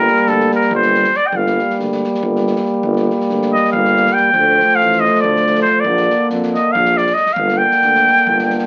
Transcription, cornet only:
Already playing: A#4
0.28 A4
0.55 A#4
0.75 C5
1.17 D5
1.27 G5
1.36 F5
3.53 D#5
3.72 F5
4.13 G5
4.75 F5
5.00 D#5
5.21 D5
5.62 C5
5.80 D5
6.54 D#5
6.72 F5
6.97 D5
7.14 D#5
7.33 F5
7.58 G5

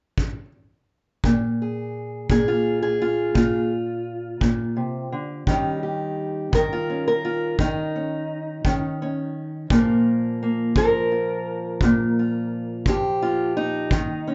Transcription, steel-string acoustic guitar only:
1.25 A#2
1.62 G#4
2.30 A#2 G#4
2.48 F4
2.82 G#4
3.02 F4
3.34 A#2 F4
4.41 A#2
4.77 C3
5.12 D3
5.47 D#3 G3 C#4 D#4 G4
5.83 G4
6.52 D#3 A#4
6.73 F4
6.89 C#4
7.08 A#4
7.25 F4
7.59 D#3 D#4
7.96 C#4
8.64 D#3 C#4
9.02 C#4
9.71 A#2 F3 A#3 F4 A#4
10.43 A#3
10.76 F3 A#4
11.12 F4
11.84 A#2
12.19 F4
12.88 F3 G4
13.22 F4
13.57 D#4
13.92 D#3
14.27 C#4

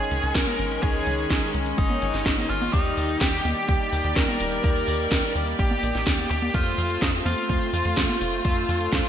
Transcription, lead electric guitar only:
Already playing: G#4
0.35 A#4
0.83 G#4
1.78 D#4
2.50 F4
2.73 D#4
3.21 G4
3.69 G4
4.16 A#4
4.64 A#4
5.59 G4
6.31 G4
6.54 F4
7.02 D#4
7.26 F4

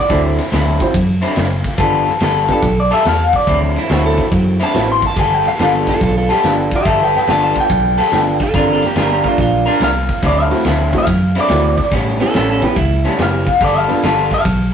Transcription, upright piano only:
0.09 C4 E4 F#4 A4
0.81 C4 E4 F#4 C5
1.79 B3 D4 F4 A4
2.49 B3 D4 F4 G4
3.89 C4 E4 F#4 A4
4.73 C4 E4 F#4 B4
5.59 B3 D4 F4 A4
6.43 B3 D4 F4 A4
7.28 B3 D4 F4 A4
8.12 B3 D4 F4 A4
8.54 A#3 D4 F4 A4
9.24 A#3 D4 F4 A#4
10.50 A3 C4 E4 F#4
10.93 A3 C4 E4 F#4
11.49 A3 C4 E4 F#4
12.20 B3 C#4 E4 G4
12.62 B3 C#4 E4 G4
13.19 B3 C#4 E4 G4
13.88 B3 D4 F4 A4

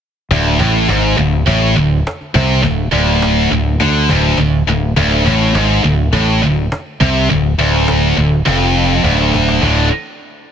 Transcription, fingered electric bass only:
0.31 D1
0.60 A1
0.88 G#1
1.19 D1
1.47 A1
1.76 D1
2.35 C2
2.63 D1
2.92 D1
3.51 D1
3.80 D2
4.09 D1
4.37 D1
4.67 D1
4.97 D1
5.26 A1
5.55 G#1
5.84 D1
6.13 A1
6.42 D1
7.01 C2
7.30 D1
7.58 D1
8.18 D1
8.47 F1
9.04 D1
9.63 D1

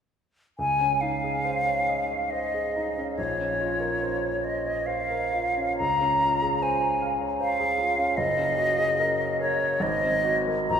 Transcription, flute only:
0.58 G#5
1.01 F5
2.30 D#5
3.16 C#5
4.44 D#5
4.86 F5
5.78 A#5
6.62 G#5
7.41 F5
8.17 D#5
9.41 C#5
9.82 D#5
10.70 A#5

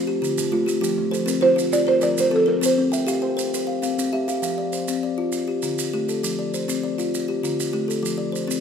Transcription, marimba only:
1.43 C5
1.73 D5
1.88 C5
2.03 D5
2.20 C5
2.36 A4
2.48 A#4
2.66 C5

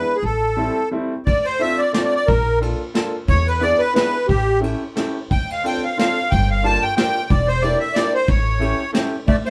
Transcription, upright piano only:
0.57 G3 A3 C4 E4
0.91 G3 A3 C4 E4
1.59 A3 C4 D4 F4
1.93 A3 C4 D4 F4
2.60 A#3 D4 F4 A4
2.94 A#3 D4 F4 A4
3.60 B3 D4 E4 G#4
3.94 B3 D4 E4 G#4
4.60 A3 C#4 E4 G4
4.96 A3 C#4 E4 G4
5.64 C4 D4 F4 A4
5.97 C4 D4 F4 A4
6.62 A#3 D4 F4 G4
6.96 A#3 D4 F4 G4
7.62 A#3 D4 E4 G4
7.95 A#3 D4 E4 G4
8.59 A3 C#4 E4 G4
8.93 A3 C#4 E4 G4

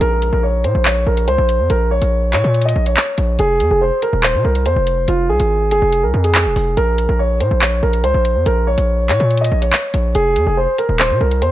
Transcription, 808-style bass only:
0.01 A#1
0.33 A#1
0.64 A#2
0.75 A#1
1.07 A#1
1.28 C#2
1.38 A#1
1.59 F2
1.70 A#1
2.02 A#1
2.33 A#2
2.44 A#2
2.76 A#1
3.18 A#1
3.39 F1
3.60 F2
3.71 F1
4.13 D#1
4.34 C3
4.45 C2
4.66 F2
4.76 F1
5.08 F1
5.29 C2
5.40 G#1
5.71 F#1
5.82 F1
6.03 C2
6.14 F2
6.45 D#1
6.56 F1
6.77 A#1
7.09 A#1
7.40 A#2
7.51 A#1
7.83 A#1
8.04 C#2
8.14 A#1
8.36 F2
8.46 A#1
8.78 A#1
9.09 A#2
9.20 A#2
9.52 A#1
9.94 A#1
10.15 F1
10.36 F2
10.47 F1
10.89 D#1
11.10 C3
11.21 C2
11.42 F2

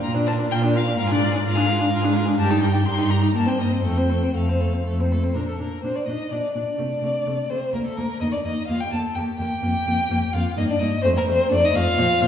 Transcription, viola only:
0.03 F4
0.15 D4
0.27 F4
0.39 D4
0.51 F4
0.64 D4
0.75 F4
0.88 D4
1.00 F4
1.11 D4
1.24 F4
1.35 D4
1.45 F4
1.57 D4
1.69 F4
1.81 D4
1.93 F4
2.04 D4
2.16 F4
2.28 D4
2.39 G4
2.51 D#4
2.64 G4
2.74 D#4
2.86 G4
2.99 D#4
3.10 G4
3.22 D#4
3.34 A#3
3.47 C4
3.58 A#3
3.72 C4
3.85 A3
3.97 C4
4.11 A3
4.23 C4
4.36 A3
4.49 C4
4.61 A3
4.74 C4
4.86 A3
5.00 C4
5.13 A3
5.23 C4
5.35 D4
5.59 D4
5.84 D4
6.09 D4
6.32 D4
6.55 D4
6.78 A3
7.03 A3
7.27 A3
7.50 A3
7.75 A#3
7.97 A#3
8.22 A#3
8.46 A#3
8.69 A#3
8.94 A#3
9.17 A#3
9.41 A#3
9.63 A#3
9.87 A#3
10.11 A#3
10.34 A#3
10.58 A#3
10.81 A#3
11.05 A3
11.28 A3
11.52 A3
11.76 A3
11.98 F3
12.21 F3

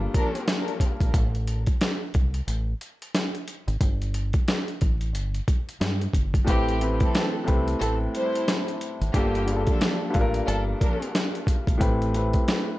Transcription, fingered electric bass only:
1.01 A#1
1.14 A1
2.15 C2
2.47 A1
3.68 G#1
3.81 G1
4.82 A1
5.14 G1
5.81 G2
6.13 G1
6.47 A1
7.48 C2
7.81 A1
9.01 G#1
9.14 G1
10.15 A1
10.48 G1
11.67 A#1
11.81 A1

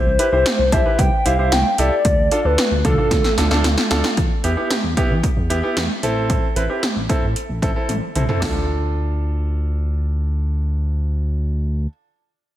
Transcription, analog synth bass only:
0.06 C2
0.32 C2
0.59 C2
0.72 C2
0.99 C2
1.25 C2
1.39 C2
1.52 C2
1.78 C2
2.05 D2
2.18 D2
2.45 D2
2.71 D2
2.85 D2
3.11 D2
3.38 D2
3.51 D2
3.64 D2
3.91 D2
4.17 E2
4.44 E2
4.84 E2
5.10 E3
5.37 E2
5.50 E2
5.76 E2
6.03 A1
6.56 A1
6.96 A1
7.23 A2
7.49 A1
7.62 A1
7.89 A1
8.15 C2
8.42 D2

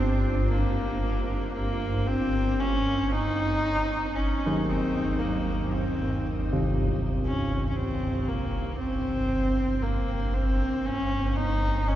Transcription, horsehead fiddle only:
0.00 C4
0.50 A#3
1.54 A#3
2.07 C4
2.60 C#4
3.12 D#4
4.16 C#4
4.67 C4
5.18 A#3
5.72 C4
7.25 C#4
7.69 C#4
7.76 C4
8.28 A#3
8.78 C4
9.82 A#3
10.34 C4
10.86 C#4
11.36 D#4
11.88 C#4

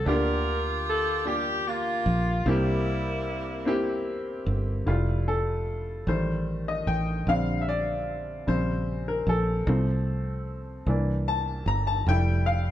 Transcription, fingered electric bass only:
0.06 D2
2.06 A#1
2.46 C2
4.46 G1
4.87 F1
6.07 A1
6.87 A1
7.27 A#1
8.48 A#1
9.27 A#1
9.67 C2
10.86 C2
11.66 G1
12.06 F1

